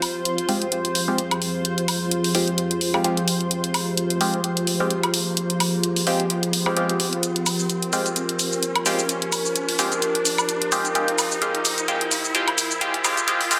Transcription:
Already playing: F3 F4 G4 G#4 C5, riser
0.02 open hi-hat, high woodblock
0.25 closed hi-hat
0.38 closed hi-hat
0.49 G#3 C4 F4 G4, open hi-hat
0.62 closed hi-hat
0.72 closed hi-hat
0.85 closed hi-hat
0.95 open hi-hat
1.08 G#3 C4 F4 G4
1.18 closed hi-hat
1.31 closed hi-hat, high woodblock
1.42 open hi-hat
1.65 closed hi-hat
1.78 closed hi-hat
1.88 open hi-hat, high woodblock
2.11 closed hi-hat
2.24 open hi-hat
2.35 G#3 C4 F4 G4, open hi-hat
2.48 closed hi-hat
2.58 closed hi-hat
2.71 closed hi-hat
2.81 open hi-hat
2.94 G#3 C4 F4 G4, high woodblock
3.04 G#3 C4 F4 G4, closed hi-hat
3.17 closed hi-hat
3.28 open hi-hat
3.41 closed hi-hat
3.51 closed hi-hat
3.64 closed hi-hat
3.74 open hi-hat, high woodblock
3.97 closed hi-hat
4.10 closed hi-hat
4.21 G#3 C4 F4 G4, open hi-hat
4.34 closed hi-hat
4.44 closed hi-hat
4.57 closed hi-hat
4.67 open hi-hat
4.80 G#3 C4 F4 G4
4.90 closed hi-hat
5.03 closed hi-hat, high woodblock
5.14 open hi-hat
5.37 closed hi-hat
5.50 closed hi-hat
5.60 open hi-hat, high woodblock
5.83 closed hi-hat
5.96 open hi-hat
6.07 G#3 C4 F4 G4, open hi-hat
6.20 closed hi-hat
6.30 closed hi-hat
6.43 closed hi-hat
6.53 open hi-hat
6.66 G#3 C4 F4 G4, high woodblock
6.77 G#3 C4 F4 G4, closed hi-hat
6.89 closed hi-hat
7.00 open hi-hat
7.13 closed hi-hat
7.23 A#4, closed hi-hat, shaker
7.36 closed hi-hat
7.46 open hi-hat, high woodblock, shaker
7.59 shaker
7.70 closed hi-hat, shaker
7.82 closed hi-hat
7.93 G#3 C4 F4 G4, open hi-hat, shaker
8.06 closed hi-hat, shaker
8.16 closed hi-hat, shaker
8.29 closed hi-hat
8.39 open hi-hat, shaker
8.53 shaker
8.63 closed hi-hat, shaker
8.76 closed hi-hat, high woodblock
8.86 G#3 C4 F4 G4, open hi-hat, shaker
8.99 shaker
9.09 closed hi-hat, shaker
9.22 closed hi-hat
9.32 open hi-hat, high woodblock, shaker
9.46 shaker
9.56 closed hi-hat, shaker
9.69 open hi-hat
9.79 G#3 C4 F4 G4, open hi-hat, shaker
9.92 closed hi-hat, shaker
10.02 closed hi-hat, shaker
10.15 closed hi-hat
10.25 open hi-hat, shaker
10.38 high woodblock, shaker
10.49 closed hi-hat, shaker
10.62 closed hi-hat
10.72 G#3 C4 F4 G4, open hi-hat, shaker
10.85 closed hi-hat, shaker
10.95 G#3 C4 F4 G4, closed hi-hat, shaker
11.08 closed hi-hat
11.18 open hi-hat, high woodblock, shaker
11.32 shaker
11.42 G#3 C4 F4 G4, closed hi-hat, shaker
11.55 closed hi-hat
11.65 open hi-hat, shaker
11.78 closed hi-hat, shaker
11.88 G#3 C4 F4 G4, closed hi-hat, shaker
12.01 closed hi-hat
12.11 open hi-hat, shaker
12.25 shaker
12.35 G#3 C4 F4 G4, closed hi-hat, shaker
12.48 closed hi-hat, high woodblock
12.58 open hi-hat, shaker
12.71 shaker
12.81 G#3 C4 F4 G4, closed hi-hat, shaker
12.94 closed hi-hat
13.04 G#3 C4 F4 G4, open hi-hat, high woodblock, shaker
13.17 closed hi-hat, shaker
13.28 G#3 C4 F4 G4, closed hi-hat, shaker
13.41 open hi-hat
13.51 G#3 C4 F4 G4, open hi-hat, shaker

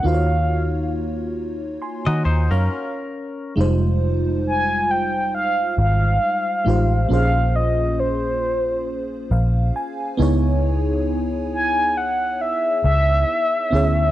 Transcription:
0.03 D#2 A#3 D#4 F4 F#4 F5
0.08 C5
0.14 C#5
1.82 G#5 C6
2.06 D#3 F#4 D#5 F#5 A#5
2.25 D#2 D#4 C5
2.51 F#2 C#4 A#4 C#5 F5
3.56 F1 G3 G#3 D#4 F4
3.61 C5
4.47 G#5
4.91 G5
5.35 F5
5.78 G#1 F5
6.65 A1 G#3 D#4 F4 G4
6.69 C5
7.09 A#1 A#3 C#4 F4 G#4 F5
7.13 C5
7.56 D#5
8.00 C5
9.31 A#1 F5
9.76 G#5
10.17 C#2 B3 D#4 E4 G#4 G#5
10.22 C#5
11.53 G#5
11.97 F#5
12.41 E5
12.84 C#2 E5
13.71 D2 B3 C#4 E4 G#4
13.76 C#5

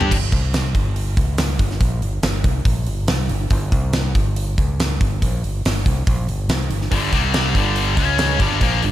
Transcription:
Already playing: G3 D4 G4 A4
0.01 floor tom
0.11 G1, kick, crash
0.32 C2, kick, open hi-hat
0.54 snare, open hi-hat
0.74 G1, kick, open hi-hat
0.96 open hi-hat
1.17 C#2, kick, open hi-hat
1.38 snare, open hi-hat
1.59 G1, kick, open hi-hat
1.71 snare
1.81 A#1, kick, open hi-hat
2.01 G1, open hi-hat
2.22 G1, snare, open hi-hat
2.44 C2, kick, open hi-hat
2.65 A#1, kick, open hi-hat
2.86 G1, open hi-hat
3.08 C2, snare, open hi-hat
3.29 G1, open hi-hat
3.50 G1, kick, open hi-hat
3.72 C2, kick, open hi-hat
3.93 snare, open hi-hat
4.15 G1, kick, open hi-hat
4.36 open hi-hat
4.58 C#2, kick, open hi-hat
4.80 snare, open hi-hat
5.01 G1, kick, open hi-hat
5.21 A#1, kick, open hi-hat
5.43 G1, open hi-hat
5.65 G1, snare, open hi-hat
5.86 C2, kick, open hi-hat
6.07 A#1, kick, open hi-hat
6.28 G1, open hi-hat
6.49 C2, snare, open hi-hat
6.70 G1, open hi-hat
6.81 snare
6.92 G1 G2 D3 G3, kick, open hi-hat
7.12 C2 C3 G3 C4, kick, open hi-hat
7.34 snare, open hi-hat
7.55 G1 G2 D3 G3, kick, open hi-hat
7.76 open hi-hat
7.97 C#2 C#3 G#3 C#4, kick, open hi-hat
8.19 snare, open hi-hat
8.40 G1 G2 D3 G3, kick, open hi-hat
8.51 snare
8.61 A#1 A#2 F3 A#3, kick, open hi-hat
8.82 G1 G2 D3, open hi-hat

